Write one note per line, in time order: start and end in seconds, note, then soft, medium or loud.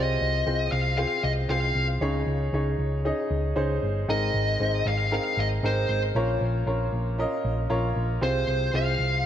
0.00 0.16 C2 medium
0.00 0.68 C3 medium
0.00 0.34 C4 medium
0.00 0.34 F4 medium
0.00 0.34 G#4 medium
0.00 0.34 C5 medium
0.00 0.72 D#5 medium
0.21 0.42 C2 loud
0.46 0.68 C2 loud
0.46 0.85 C4 medium
0.46 0.86 F4 medium
0.46 0.86 G#4 medium
0.46 0.86 C5 medium
0.72 1.04 C2 medium
0.72 0.96 F5 loud
0.98 1.37 C4 medium
0.98 1.37 F4 medium
0.98 1.37 G#4 medium
0.98 1.38 C5 medium
0.98 1.24 F5 medium
1.24 1.45 C2 loud
1.24 1.31 D#5 medium
1.49 1.71 C2 medium
1.49 1.89 C4 medium
1.49 1.89 F4 medium
1.49 1.89 G#4 medium
1.49 1.89 C5 medium
1.49 1.86 F5 medium
1.75 1.97 C2 medium
2.01 2.22 C#2 medium
2.01 2.76 C#3 medium
2.01 2.41 C#4 medium
2.01 2.41 D#4 medium
2.01 2.41 G#4 medium
2.01 2.41 C#5 loud
2.27 2.48 C#2 medium
2.53 2.74 C#2 medium
2.53 2.93 C#4 medium
2.53 2.93 D#4 medium
2.53 2.93 G#4 medium
2.53 2.93 C#5 medium
2.79 3.11 C#2 medium
3.05 3.44 C#4 medium
3.05 3.44 D#4 medium
3.05 3.44 G#4 medium
3.05 3.45 D#5 medium
3.31 3.52 C#2 loud
3.56 3.78 C#2 medium
3.56 3.95 C#4 medium
3.56 3.96 D#4 medium
3.56 3.96 G#4 medium
3.56 3.96 C5 medium
3.83 4.04 G1 medium
4.08 4.30 G#1 medium
4.08 4.82 G#2 medium
4.08 4.48 C4 medium
4.08 4.48 D#4 medium
4.08 4.48 G#4 medium
4.08 4.48 A#4 medium
4.08 4.87 D#5 medium
4.34 4.56 G#1 loud
4.60 4.81 G#1 medium
4.60 4.99 C4 medium
4.60 4.99 D#4 medium
4.60 5.00 G#4 medium
4.60 5.00 C5 medium
4.85 5.18 G#1 loud
4.85 5.11 F5 loud
5.11 5.51 C4 medium
5.11 5.51 D#4 medium
5.11 5.51 G#4 medium
5.11 5.51 A#4 medium
5.11 5.40 F5 medium
5.37 5.59 G#1 medium
5.37 5.47 D#5 medium
5.63 5.85 G#1 loud
5.63 6.03 C4 medium
5.63 6.03 D#4 medium
5.63 6.03 G#4 medium
5.63 6.03 A#4 medium
5.63 6.01 C5 medium
5.89 6.10 G#1 medium
6.15 6.36 A#1 medium
6.15 6.89 A#2 medium
6.15 6.55 C#4 medium
6.15 6.55 F4 medium
6.15 6.55 A#4 medium
6.15 6.55 C#5 loud
6.41 6.62 A#1 medium
6.66 6.88 A#1 loud
6.66 7.06 C#4 medium
6.66 7.06 F4 medium
6.66 7.06 A#4 medium
6.66 7.06 C#5 medium
6.92 7.25 A#1 medium
7.18 7.58 C#4 medium
7.18 7.58 F4 medium
7.18 7.58 A#4 medium
7.18 7.58 D#5 medium
7.45 7.66 A#1 loud
7.70 7.92 A#1 medium
7.70 8.09 C#4 loud
7.70 8.09 F4 medium
7.70 8.09 A#4 medium
7.70 8.10 C#5 medium
7.96 8.18 A#1 medium
8.21 8.43 C2 loud
8.21 8.95 C3 medium
8.21 8.61 C4 medium
8.21 8.61 F4 medium
8.21 8.61 G#4 medium
8.21 8.61 C5 medium
8.21 8.76 C5 medium
8.48 8.69 C2 medium
8.73 8.95 C2 medium
8.73 9.13 C4 medium
8.73 9.13 F4 medium
8.73 9.13 G#4 medium
8.73 9.13 C5 medium
8.73 9.23 F5 loud
8.99 9.26 C2 loud